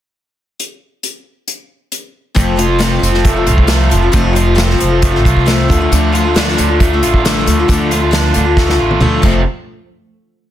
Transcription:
0.60 closed hi-hat
1.03 closed hi-hat
1.48 closed hi-hat
1.92 closed hi-hat
2.35 F1 F2 C3 F3 A3 C4 F4, kick, closed hi-hat
2.56 F3 A3 C4 F4, closed hi-hat
2.66 F3 A3 C4 F4
2.79 F2 C3 F3 A3 C4 F4, snare, closed hi-hat
2.99 F1 F3 A3 C4 F4, closed hi-hat
3.03 F3
3.11 F3 A3 C4 F4, snare
3.25 A3, kick, closed hi-hat
3.36 F3 A3 C4 F4
3.47 C2 F4, closed hi-hat
3.58 kick
3.67 F2 C3 F3 A3 C4 F4, snare, closed hi-hat
3.89 F1 F3 A3 C4 F4, closed hi-hat
4.02 F3 A3 C4 F4
4.12 F1 F2 C3 F3 A3 C4 F4, kick, closed hi-hat
4.33 F3 A3 C4 F4, closed hi-hat
4.44 F3 A3 C4 F4
4.55 F2 C3 F3 A3 C4 F4, snare, closed hi-hat
4.70 snare
4.78 F1 F3 A3 C4 F4, closed hi-hat
4.89 F3 A3 C4 F4
5.02 A3, kick, closed hi-hat
5.11 F3 A3 C4 F4
5.15 snare
5.25 C2 F4, kick, closed hi-hat
5.37 kick
5.45 F2 C3 F3 A3 C4 F4, snare, closed hi-hat
5.68 D2 D3 F3 A3 D4 F4, kick, closed hi-hat
5.81 A3 D4 F4
5.92 D2 D3 F3 A3 D4 F4, closed hi-hat
6.12 F3 A3 D4 F4, closed hi-hat
6.24 A3 D4 F4
6.34 D3 F3 A3 D4 F4, snare, closed hi-hat
6.48 snare
6.57 D2 D3 F3 A3 D4 F4, closed hi-hat
6.69 A3 D4 F4
6.80 A3, kick, closed hi-hat
6.93 A3 D4 F4
7.02 A1 F4, closed hi-hat
7.14 kick
7.25 D3 F3 A3 D4 F4, snare, closed hi-hat
7.46 D2 D3 F3 A3 D4 F4, closed hi-hat
7.59 A3 D4 F4
7.68 D2 D3 F3 A3 D4 F4, kick, closed hi-hat
7.91 F3 A3 D4 F4, closed hi-hat
8.01 A3 D4 F4
8.11 D3 F3 A3 D4 F4, snare, closed hi-hat
8.34 D2 D3 F3 A3 D4 F4, closed hi-hat
8.45 A3 D4 F4
8.57 A3, kick, snare
8.68 A3 D4 F4, snare
8.79 A1 F4
8.91 high tom
9.00 D2 D3 F3 A3 D4 F4, mid tom
9.22 F1 F2 C3 F3 A3 C4 F4, kick, crash

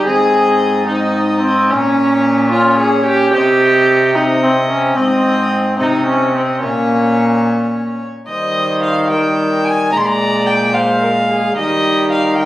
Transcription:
0.06 G#2 C4 G#4 D#5
0.88 C4 D#4 D#5
1.42 C4
1.70 A#2 C#4 C#5
2.51 C#4 F4 C#5
2.80 G#4
3.06 G4
3.33 C3 C4 G4 D#5
4.15 C4 D#4 D#5
4.43 C4
4.70 C#4
4.97 G#2 C4 D#5
5.79 C3 C4 D#4 D#5
6.06 C#4
6.34 C4
6.61 A#2 A#3 C#4 C#5
8.27 D#3 G3 C5 D#5
8.83 F5
9.10 G3 A#4 G5
9.65 G#5
9.92 A#2 G#3 D5 A#5
9.98 C6
10.06 A#5
10.46 G5
10.73 G#3 C5 F5
11.02 A#4
11.30 G#4
11.57 D#3 G3 G4 D#5
12.11 F5
12.38 G3 A#4 G5

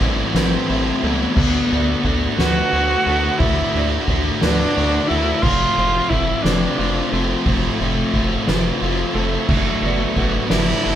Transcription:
Already playing: A2 E3 E4 C5
0.01 A1 A2 E3 G3 A3 C4 E4, kick, ride
0.34 A1 A2 E3 A3 C4 E4 B4, snare, ride
0.69 A1 A2 E3 A3 C4 E4, ride
1.02 C#2 A2 E3 G3 A3 B3 C4 E4 A4, ride
1.36 D2 D3 A3 D4 F#4, kick, crash
1.70 D2 D3 A3 D4 F#4 D5, ride
2.04 D2 D3 A3 D4 F#4, kick, ride
2.37 D2 D3 A3 B3 D4 F#4 B4, snare, ride
2.72 D2 D3 A3 D4 F#4, ride
3.06 D2 D3 A3 D4 F#4 A4, ride
3.38 D2 D3 A3 D4 E4 F#4, kick, ride
3.74 D2 D3 A3 D4 F#4 D5, ride
4.08 D2 D3 A3 D4 F#4, kick, ride
4.40 D2 D3 A3 B3 D4 F#4 B4, snare, ride
4.76 D2 D3 A3 D4 F#4, ride
5.07 D2 D3 A3 D4 E4 F#4 A4, ride
5.42 F1 F2 F3 A3 C4 F4, kick, crash
5.77 F1 C3 F3 A3 C4 F4 C5, ride
6.09 F1 F3 A3 C4 E4 F4, kick, ride
6.43 F1 F3 A3 C4 D4 F4 B4, snare, ride
6.79 F1 F3 A3 C4 F4, ride
7.09 F1 F3 C4 A4, ride
7.14 A3 C4 F4
7.44 F1 F2 F3 A3 C4 F4, kick, ride
7.80 F1 C3 F3 A3 C4 F4 C5, ride
8.14 F1 F3 A3 C4 F4, kick, ride
8.47 F1 F3 A3 C4 F4 B4, snare, ride
8.81 F1 F3 A3 C4 F4, ride
9.13 F1 F3 A3 C4 F4 A4, ride
9.49 F#1 F#3 A3 D4 F#4, kick, crash
9.82 F#1 F#3 A3 B3 D4 F#4 D5, ride
10.16 F#1 F#3 A3 B3 D4 F#4, kick, ride
10.50 F#1 F#3 A3 D4 E4 F#4 B4, snare, ride
10.84 F#1 F#3 A3 D4 F#4 A4, ride

